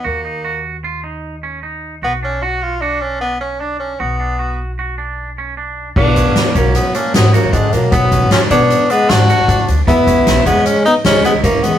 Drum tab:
CC |----------|----------|----------|x---------|
HH |----------|----------|----------|-xxxxxxxxx|
SD |----------|----------|----------|--o---o--o|
BD |----------|----------|----------|oo-o----o-|

CC |----------|----------|
HH |xxxxxxxxxx|xxxxxxxxxx|
SD |--o---o---|--o---o---|
BD |oo-o----o-|oo-o----o-|